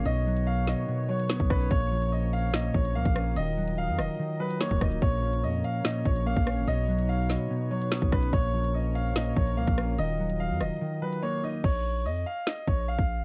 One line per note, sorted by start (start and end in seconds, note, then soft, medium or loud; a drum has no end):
0.05 0.75 B1 loud
0.05 0.87 B2 medium
0.05 1.69 D#3 medium
0.05 1.69 B3 medium
0.05 1.69 F#4 medium
0.05 3.33 C#5 medium
0.05 0.44 D#5 loud
0.05 closed hi-hat medium
0.27 1.08 F#3 medium
0.37 closed hi-hat medium
0.47 0.65 F5 medium
0.67 1.06 D#5 medium
0.67 snare medium
0.67 closed hi-hat medium
0.88 1.71 B2 medium
1.09 1.71 F#3 medium
1.09 1.48 C#5 medium
1.20 closed hi-hat medium
1.29 1.71 B3 medium
1.29 snare loud
1.29 closed hi-hat medium
1.40 1.50 B1 loud
1.40 kick medium
1.50 1.70 B1 loud
1.50 1.71 C#4 medium
1.50 1.69 B4 medium
1.50 kick loud
1.50 cross-stick loud
1.50 closed hi-hat medium
1.61 closed hi-hat medium
1.71 2.70 A#1 loud
1.71 2.52 A#2 loud
1.71 3.35 F3 medium
1.71 3.35 C#4 medium
1.71 6.63 A#4 medium
1.71 2.10 C#5 loud
1.71 kick loud
1.71 closed hi-hat medium
1.92 2.73 F3 medium
2.02 closed hi-hat medium
2.12 2.31 D#5 medium
2.33 2.51 F5 medium
2.33 closed hi-hat medium
2.53 3.36 A#2 medium
2.53 2.72 D#5 medium
2.53 snare loud
2.53 closed hi-hat medium
2.74 2.97 A#1 loud
2.74 3.36 F3 medium
2.74 2.93 C#5 medium
2.74 kick medium
2.85 closed hi-hat medium
2.95 3.05 C#2 loud
2.95 3.36 A#3 medium
2.95 3.34 F5 medium
3.05 3.35 A#1 loud
3.05 kick medium
3.05 closed hi-hat medium
3.16 3.37 C#4 medium
3.16 cross-stick loud
3.16 closed hi-hat medium
3.36 3.90 D#1 loud
3.36 4.18 D#3 loud
3.36 5.00 F#3 medium
3.36 5.00 F4 medium
3.36 3.75 D#5 loud
3.36 5.00 D#5 medium
3.36 closed hi-hat medium
3.57 4.39 F#3 medium
3.68 closed hi-hat medium
3.78 3.96 F5 medium
3.88 4.00 F#2 loud
3.98 4.08 D#1 loud
3.98 4.37 D#5 medium
3.98 cross-stick loud
3.98 closed hi-hat medium
4.19 5.01 D#3 medium
4.40 5.02 F#3 medium
4.40 4.58 B4 medium
4.51 closed hi-hat medium
4.60 5.02 A#3 medium
4.60 4.79 C#5 medium
4.60 snare loud
4.60 closed hi-hat medium
4.71 4.81 D#1 loud
4.71 kick medium
4.81 5.01 D#1 loud
4.81 5.02 D#4 medium
4.81 5.00 D#5 medium
4.81 kick loud
4.81 cross-stick loud
4.81 closed hi-hat medium
4.92 closed hi-hat medium
5.02 5.45 A#1 loud
5.02 5.83 A#2 medium
5.02 6.66 F3 medium
5.02 6.66 C#4 medium
5.02 5.41 C#5 loud
5.02 8.30 C#5 medium
5.02 kick loud
5.02 closed hi-hat medium
5.22 6.04 F3 medium
5.33 closed hi-hat medium
5.43 5.63 F2 loud
5.43 5.62 D#5 medium
5.64 5.83 F5 medium
5.64 closed hi-hat medium
5.85 6.67 A#2 medium
5.85 6.03 D#5 medium
5.85 snare loud
5.85 closed hi-hat medium
6.05 6.35 A#1 loud
6.05 6.68 F3 medium
6.05 6.24 C#5 medium
6.05 kick medium
6.16 closed hi-hat medium
6.26 6.68 A#3 medium
6.26 6.65 F5 medium
6.37 6.59 A#1 loud
6.37 kick medium
6.37 closed hi-hat medium
6.47 6.68 C#4 medium
6.47 cross-stick loud
6.47 closed hi-hat medium
6.57 6.67 G#1 loud
6.67 7.37 B1 loud
6.67 7.49 B2 medium
6.67 8.31 F#3 medium
6.67 8.31 D#4 medium
6.67 8.31 B4 medium
6.67 7.06 D#5 loud
6.67 closed hi-hat medium
6.89 7.70 F#3 medium
6.99 closed hi-hat medium
7.09 7.27 F5 medium
7.30 7.69 D#5 medium
7.30 snare medium
7.30 closed hi-hat medium
7.50 8.33 B2 medium
7.71 8.33 F#3 medium
7.71 8.10 C#5 medium
7.82 closed hi-hat medium
7.91 8.33 B3 medium
7.91 snare loud
7.91 closed hi-hat medium
8.02 8.12 B1 loud
8.02 kick medium
8.12 8.32 B1 loud
8.12 8.33 C#4 medium
8.12 8.31 B4 medium
8.12 kick loud
8.12 cross-stick loud
8.12 closed hi-hat medium
8.23 closed hi-hat medium
8.33 9.32 A#1 loud
8.33 9.14 A#2 medium
8.33 9.97 F3 medium
8.33 9.97 C#4 medium
8.33 11.61 A#4 medium
8.33 8.72 C#5 loud
8.33 9.97 C#5 medium
8.33 kick loud
8.33 closed hi-hat loud
8.54 9.35 F3 medium
8.64 closed hi-hat medium
8.74 8.93 D#5 medium
8.95 9.13 F5 medium
8.95 closed hi-hat medium
9.15 9.98 A#2 medium
9.15 9.34 D#5 medium
9.15 snare loud
9.15 closed hi-hat medium
9.36 9.59 A#1 loud
9.36 9.98 F3 medium
9.36 9.55 C#5 medium
9.36 kick medium
9.47 closed hi-hat medium
9.57 9.67 C#2 loud
9.57 9.99 A#3 medium
9.57 9.96 F5 medium
9.68 9.97 A#1 loud
9.68 kick medium
9.68 closed hi-hat medium
9.78 9.99 C#4 medium
9.78 cross-stick loud
9.78 closed hi-hat medium
9.98 10.52 D#1 loud
9.98 10.80 D#3 loud
9.98 11.62 F#3 medium
9.98 11.62 F4 medium
9.98 11.62 D#5 medium
9.98 10.37 D#5 loud
9.98 closed hi-hat medium
10.19 11.01 F#3 medium
10.30 closed hi-hat medium
10.40 10.58 F5 medium
10.50 10.62 F#2 loud
10.61 10.70 D#1 loud
10.61 10.99 D#5 medium
10.61 cross-stick medium
10.61 closed hi-hat medium
10.81 11.64 D#3 medium
11.02 11.64 F#3 medium
11.02 11.20 B4 medium
11.13 closed hi-hat medium
11.23 11.64 A#3 medium
11.23 11.41 C#5 medium
11.43 11.64 D#4 medium
11.43 11.62 D#5 medium
11.64 12.07 A#1 loud
11.64 12.03 C#5 loud
11.64 kick loud
11.64 crash medium
12.05 12.25 F2 loud
12.05 12.24 D#5 medium
12.26 12.45 F5 medium
12.47 12.65 D#5 medium
12.47 snare loud
12.68 12.97 A#1 loud
12.68 12.86 C#5 medium
12.68 kick medium
12.88 13.24 F5 medium
12.99 13.21 A#1 loud
12.99 kick medium
13.19 13.24 G#1 loud